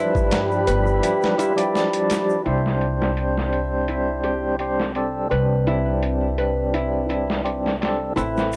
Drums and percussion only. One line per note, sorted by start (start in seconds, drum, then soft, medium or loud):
0.15 kick medium
0.15 shaker soft
0.31 snare loud
0.31 closed hi-hat medium
0.31 shaker medium
0.52 shaker soft
0.67 closed hi-hat medium
0.67 shaker medium
0.86 shaker soft
1.03 closed hi-hat medium
1.03 shaker medium
1.22 snare soft
1.22 shaker soft
1.39 closed hi-hat medium
1.39 shaker medium
1.58 closed hi-hat medium
1.58 shaker soft
1.75 snare soft
1.75 shaker soft
1.93 closed hi-hat medium
1.93 shaker soft
2.10 snare medium
2.10 closed hi-hat medium
2.10 shaker medium
2.30 shaker soft
2.46 closed hi-hat medium
2.66 snare soft
2.81 closed hi-hat medium
3.02 snare medium
3.17 closed hi-hat medium
3.38 snare soft
3.53 closed hi-hat medium
3.88 closed hi-hat medium
4.24 closed hi-hat medium
4.59 closed hi-hat medium
4.80 snare soft
4.95 closed hi-hat medium
5.31 closed hi-hat medium
5.67 closed hi-hat medium
6.03 closed hi-hat medium
6.38 closed hi-hat medium
6.74 closed hi-hat medium
7.10 closed hi-hat medium
7.30 snare soft
7.45 closed hi-hat medium
7.66 snare soft
7.82 snare soft
7.82 closed hi-hat medium
8.17 closed hi-hat medium
8.17 shaker soft
8.37 snare soft
8.37 shaker soft
8.53 closed hi-hat medium
8.53 shaker medium